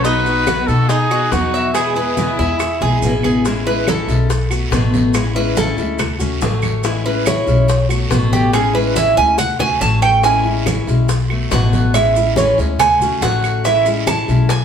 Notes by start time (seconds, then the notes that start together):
Already playing: B1
0.04 B2 F#3 B3 D#4 F#4 B4, high bongo, long guiro, maracas
0.26 B3 D#4 F#4, high conga, maracas
0.46 B2 F#3 B3 D#4 F#4 B4, high bongo, high conga, short guiro, claves, maracas
0.67 B2 B3 D#4 F#4 A4, high conga, short guiro, maracas
0.88 D#4 G#4, muted steel-string acoustic guitar stroke, high bongo, high conga, long guiro, maracas
1.11 B3 D#4 F#4, high conga, claves, maracas
1.31 E2 B2 F#3 B3 D#4 F#4, high bongo, low bongo, high conga, short guiro, maracas
1.54 E5, short guiro, maracas
1.74 B2 E3 G#3 B3 E4 G#4, high bongo, high conga, long guiro, claves, maracas
1.96 G#3 B3 E4 G#4 B4, high conga, maracas
2.17 B2 E3 G#3 B3 E4, high bongo, high conga, short guiro, maracas
2.38 E2 G#3 B3 E4, high bongo, high conga, short guiro, maracas
2.60 muted steel-string acoustic guitar stroke, high bongo, high conga, long guiro, claves, maracas
2.81 B1 G#3 B3 E4 G#4, high bongo, high conga, maracas
3.02 A1 B2 E3 G#3 B3 E4, high conga, short guiro, maracas
3.10 low bongo
3.23 G#4, low bongo, low conga, short guiro, claves, maracas
3.45 E3 G#3 C#4 E4, high bongo, high conga, long guiro, maracas
3.66 G#3 C#4 E4 B4, high conga
3.87 E3 G#3 C#4 E4 A4, high bongo, high conga, short guiro, claves, maracas
4.08 B1 G#3 C#4 E4, high bongo, high conga, short guiro, maracas
4.29 muted steel-string acoustic guitar stroke, high bongo, high conga, long guiro, maracas
4.50 A3 B3 F#4, high bongo, high conga, claves, maracas
4.70 A1 B2 D3 A3 B3 F#4, high bongo, low bongo, high conga, short guiro, maracas
4.93 high bongo, high conga, short guiro, maracas
5.14 E3 G#3 C#4 E4, high bongo, high conga, long guiro, claves, maracas
5.35 G#3 C#4 E4 B4, high conga
5.56 E3 G#3 C#4 E4 A4, high bongo, high conga, short guiro, maracas
5.77 D2 G#3 C#4 E4, high bongo, short guiro, maracas
5.99 muted steel-string acoustic guitar stroke, high bongo, high conga, low conga, long guiro, claves, maracas
6.19 A3 C#4 F#4, high bongo, high conga, low conga, maracas
6.41 A1 D3 A3 C#4 F#4, high bongo, low bongo, high conga, short guiro, maracas
6.62 high bongo, high conga, short guiro, claves, maracas
6.83 E3 G#3 C#4 E4, high bongo, high conga, long guiro, maracas
7.05 G#3 C#4 E4 B4, high conga
7.25 E3 G#3 C#4 E4 C#5, high bongo, high conga, short guiro, claves, maracas
7.46 B1 G#3 C#4 E4, high bongo, high conga, short guiro, maracas
7.68 muted steel-string acoustic guitar stroke, high bongo, high conga, long guiro, maracas
7.89 A3 B3 F#4, high bongo, high conga, claves, maracas
8.10 A1 B2 D3 A3 B3 F#4, high bongo, low bongo, high conga, short guiro, maracas
8.32 G4, high bongo, high conga, short guiro, maracas
8.53 E3 G#3 C#4 E4 G#4, high bongo, high conga, long guiro, claves, maracas
8.73 G#3 C#4 E4 B4, high conga
8.96 E3 G#3 C#4 E4 E5, high bongo, high conga, short guiro, maracas
9.17 D2 G#3 C#4 E4 G#5, high bongo, high conga, short guiro, maracas
9.38 F#5, muted steel-string acoustic guitar stroke, high bongo, high conga, low conga, long guiro, claves, maracas
9.59 A3 C#4 F#4 G#5, low bongo, high conga, low conga
9.80 A1 D3 A3 C#4 F#4 A5, high conga, short guiro, maracas
10.02 G5, low bongo, short guiro, claves, maracas
10.23 E3 G#3 C#4 E4 G#5, high bongo, long guiro, maracas
10.45 G#3 C#4 E4, high conga
10.66 E3 G#3 C#4 E4, high bongo, high conga, short guiro, claves, maracas
10.87 B1 G#3 C#4 E4, high bongo, high conga, short guiro, maracas
11.08 muted steel-string acoustic guitar stroke, high bongo, high conga, long guiro, maracas
11.29 A3 B3 F#4, high bongo, high conga, claves
11.51 A1 B2 D3 A3 B3 F#4 F#5, high bongo, low bongo, high conga, short guiro, maracas
11.73 high bongo, high conga, short guiro, maracas
11.94 E3 G#3 C#4 E4 E5, high bongo, high conga, long guiro, claves, maracas
12.16 G#3 C#4 E4, high conga, maracas
12.36 E3 G#3 C#4 E4 C#5, high bongo, high conga, short guiro, maracas
12.58 D2 G#3 C#4 E4, high bongo, high conga, short guiro, maracas
12.79 G#5, muted steel-string acoustic guitar stroke, high bongo, high conga, low conga, long guiro, claves, maracas
13.00 A3 C#4 F#4, high bongo, high conga, low conga, maracas
13.21 A1 D3 A3 C#4 F#4 F#5, high bongo, low bongo, high conga, short guiro, maracas
13.43 high bongo, short guiro, claves, maracas
13.64 E3 G#3 C#4 E4 E5, high bongo, high conga, long guiro, maracas
13.86 G#3 C#4 E4, high conga, maracas
14.07 E3 G#3 C#4 E4 A5, high bongo, high conga, short guiro, claves, maracas
14.28 B1 G#3 C#4 E4, high bongo, high conga, short guiro, maracas
14.49 G#5, muted steel-string acoustic guitar stroke, high bongo, high conga, long guiro, maracas